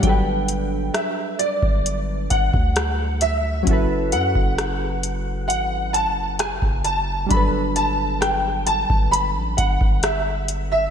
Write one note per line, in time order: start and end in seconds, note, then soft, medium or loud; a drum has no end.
0.00 0.91 G1 loud
0.00 3.61 G3 medium
0.00 3.62 D4 medium
0.00 0.97 G5 medium
0.00 kick loud
0.00 closed hi-hat medium
0.04 3.62 F#3 medium
0.04 3.65 A4 medium
0.09 3.66 B4 medium
0.48 closed hi-hat medium
0.94 1.36 E5 medium
0.94 cross-stick loud
0.94 closed hi-hat medium
1.39 2.33 D5 loud
1.39 closed hi-hat medium
1.63 2.28 G1 loud
1.63 kick medium
1.86 closed hi-hat medium
2.30 2.53 G1 medium
2.30 3.24 F#5 loud
2.30 kick medium
2.30 closed hi-hat medium
2.54 3.63 D2 loud
2.54 kick medium
2.76 cross-stick loud
2.76 closed hi-hat medium
3.21 4.15 E5 loud
3.21 closed hi-hat medium
3.63 7.25 F#3 medium
3.63 7.26 C#4 medium
3.63 closed hi-hat medium
3.67 4.14 F#1 loud
3.67 7.27 E4 medium
3.67 7.28 F#4 medium
3.67 7.29 A4 medium
3.67 kick loud
3.73 7.30 B4 medium
4.12 4.34 F#2 medium
4.12 5.46 F#5 loud
4.12 closed hi-hat medium
4.35 5.51 F#1 loud
4.35 kick medium
4.58 cross-stick loud
4.58 closed hi-hat medium
5.03 closed hi-hat medium
5.48 6.07 G#1 medium
5.48 5.95 F#5 loud
5.48 closed hi-hat medium
5.93 6.36 A5 loud
5.93 closed hi-hat medium
6.06 6.60 F#1 medium
6.39 6.50 G#5 medium
6.39 cross-stick loud
6.39 closed hi-hat medium
6.62 7.28 F#1 loud
6.62 kick medium
6.84 7.27 A5 loud
6.84 closed hi-hat medium
7.26 10.88 G3 medium
7.26 10.89 D4 medium
7.30 8.86 G1 loud
7.30 10.89 F#3 medium
7.30 10.90 A4 medium
7.30 7.77 B5 loud
7.30 kick loud
7.30 closed hi-hat medium
7.36 10.90 B4 medium
7.76 8.23 A5 loud
7.76 closed hi-hat medium
8.21 8.63 G5 medium
8.21 cross-stick loud
8.21 closed hi-hat medium
8.66 9.14 A5 loud
8.66 closed hi-hat medium
8.90 9.37 G1 loud
8.90 kick medium
9.11 9.54 B5 loud
9.11 closed hi-hat medium
9.35 9.57 A1 loud
9.57 9.80 G1 loud
9.57 10.00 F#5 medium
9.57 kick medium
9.57 closed hi-hat medium
9.81 10.90 G1 loud
9.81 kick loud
10.03 10.70 E5 medium
10.03 cross-stick loud
10.03 closed hi-hat medium
10.48 closed hi-hat medium
10.72 10.90 E5 loud